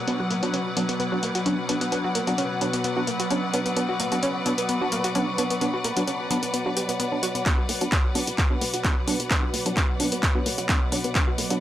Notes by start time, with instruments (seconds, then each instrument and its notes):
Already playing: synth drone B2 F#3, string section B4 D5 F#5
0.07 synth stab F#3 B3 D4, synth arpeggio sound B3, closed hi-hat
0.20 synth arpeggio sound F#4
0.31 synth arpeggio sound A#3, closed hi-hat
0.43 synth stab F#3 B3 D4, synth arpeggio sound F#4, closed hi-hat
0.54 synth arpeggio sound C#4, closed hi-hat
0.77 synth stab F#3 B3 D4, synth arpeggio sound B3, closed hi-hat
0.89 synth arpeggio sound B3, closed hi-hat
1.00 synth arpeggio sound B3, closed hi-hat
1.12 synth stab F#3 B3 D4, synth arpeggio sound F#4
1.23 synth arpeggio sound A#3, closed hi-hat
1.35 synth arpeggio sound F#4, closed hi-hat
1.46 synth stab F#3 B3 D4, synth arpeggio sound C#4, closed hi-hat
1.69 synth stab F#3 B3 D4, synth arpeggio sound B3, closed hi-hat
1.81 synth arpeggio sound B3, closed hi-hat
1.92 synth stab F#3 B3 D4, synth arpeggio sound B3, closed hi-hat
2.04 synth arpeggio sound F#4
2.15 synth arpeggio sound A#3, closed hi-hat
2.27 synth stab F#3 B3 D4, synth arpeggio sound F#4, closed hi-hat
2.38 synth arpeggio sound C#4, closed hi-hat
2.61 synth stab F#3 B3 D4, synth arpeggio sound B3, closed hi-hat
2.73 synth arpeggio sound B3, closed hi-hat
2.84 synth arpeggio sound B3, closed hi-hat
2.97 synth stab F#3 B3 D4, synth arpeggio sound F#4
3.07 synth arpeggio sound A#3, closed hi-hat
3.20 synth arpeggio sound F#4, closed hi-hat
3.30 synth stab F#3 B3 D4, synth arpeggio sound C#4, closed hi-hat
3.54 synth stab F#3 B3 D4, synth arpeggio sound B3, closed hi-hat
3.66 synth arpeggio sound B3, closed hi-hat
3.77 synth stab F#3 B3 D4, synth arpeggio sound B3, closed hi-hat
3.89 synth arpeggio sound F#4
4.00 synth arpeggio sound A#3, closed hi-hat
4.12 synth stab F#3 B3 D4, synth arpeggio sound F#4, closed hi-hat
4.23 synth arpeggio sound C#4, closed hi-hat
4.46 synth stab F#3 B3 D4, synth arpeggio sound B3, closed hi-hat
4.58 synth arpeggio sound B3, closed hi-hat
4.69 synth arpeggio sound B3, closed hi-hat
4.81 synth stab F#3 B3 D4, synth arpeggio sound F#4
4.92 synth arpeggio sound A#3, closed hi-hat
5.04 synth arpeggio sound F#4, closed hi-hat
5.15 synth stab F#3 B3 D4, synth arpeggio sound C#4, closed hi-hat
5.38 synth stab F#3 B3 D4, synth arpeggio sound B3, closed hi-hat
5.50 synth arpeggio sound B3, closed hi-hat
5.61 synth stab F#3 B3 D4, synth arpeggio sound B3, closed hi-hat
5.74 synth arpeggio sound F#4
5.84 synth arpeggio sound A#3, closed hi-hat
5.97 synth stab F#3 B3 D4, synth arpeggio sound F#4, closed hi-hat
6.07 synth arpeggio sound C#4, closed hi-hat
6.31 synth stab F#3 B3 D4, synth arpeggio sound B3, closed hi-hat
6.43 synth arpeggio sound B3, closed hi-hat
6.54 synth arpeggio sound B3, closed hi-hat
6.66 synth stab F#3 B3 D4, synth arpeggio sound F#4
6.77 synth arpeggio sound G4, closed hi-hat
6.89 synth arpeggio sound B3, closed hi-hat
7.00 synth arpeggio sound B3, closed hi-hat
7.12 synth stab F#3 B3 D4
7.23 synth arpeggio sound F#4, closed hi-hat
7.35 synth arpeggio sound B3, closed hi-hat
7.46 synth drone B2 F#3, synth stab F#3 B3 D4, synth arpeggio sound B3, kick, clap, closed hi-hat
7.58 synth arpeggio sound F#4
7.69 analog synth bass B1, synth arpeggio sound A#3, open hi-hat
7.81 analog synth bass B1, synth stab F#3 B3 D4, synth arpeggio sound F#4, closed hi-hat
7.92 synth arpeggio sound C#4, kick, clap, closed hi-hat
8.15 analog synth bass C#2, synth stab F#3 B3 D4, synth arpeggio sound B3, open hi-hat
8.27 analog synth bass C#2, synth arpeggio sound B3, closed hi-hat
8.38 synth arpeggio sound B3, kick, clap, closed hi-hat
8.50 synth stab F#3 B3 D4, synth arpeggio sound F#4
8.61 analog synth bass B1, synth arpeggio sound A#3, open hi-hat
8.74 analog synth bass B1, synth arpeggio sound F#4, closed hi-hat
8.84 synth stab F#3 B3 D4, synth arpeggio sound C#4, kick, clap, closed hi-hat
9.07 analog synth bass B1, synth stab F#3 B3 D4, synth arpeggio sound B3, open hi-hat
9.20 analog synth bass B1, synth arpeggio sound B3, closed hi-hat
9.31 synth stab F#3 B3 D4, synth arpeggio sound B3, kick, clap, closed hi-hat
9.43 synth arpeggio sound F#4
9.54 analog synth bass B1, synth arpeggio sound A#3, open hi-hat
9.66 analog synth bass B1, synth stab F#3 B3 D4, synth arpeggio sound F#4, closed hi-hat
9.77 synth arpeggio sound C#4, kick, clap, closed hi-hat
10.00 analog synth bass F#1, synth stab F#3 B3 D4, synth arpeggio sound B3, open hi-hat
10.12 analog synth bass B1, synth arpeggio sound B3, closed hi-hat
10.23 synth arpeggio sound B3, kick, clap, closed hi-hat
10.35 synth stab F#3 B3 D4, synth arpeggio sound F#4
10.46 analog synth bass F#1, synth arpeggio sound A#3, open hi-hat
10.58 analog synth bass F#1, synth arpeggio sound F#4, closed hi-hat
10.69 synth stab F#3 B3 D4, synth arpeggio sound C#4, kick, clap, closed hi-hat
10.92 analog synth bass B1, synth stab F#3 B3 D4, synth arpeggio sound B3, open hi-hat
11.04 analog synth bass B1, synth arpeggio sound B3, closed hi-hat
11.15 synth stab F#3 B3 D4, synth arpeggio sound B3, kick, clap, closed hi-hat
11.27 synth arpeggio sound F#4
11.38 analog synth bass B1, synth arpeggio sound A#3, open hi-hat
11.50 analog synth bass B1, synth stab F#3 B3 D4, synth arpeggio sound F#4, closed hi-hat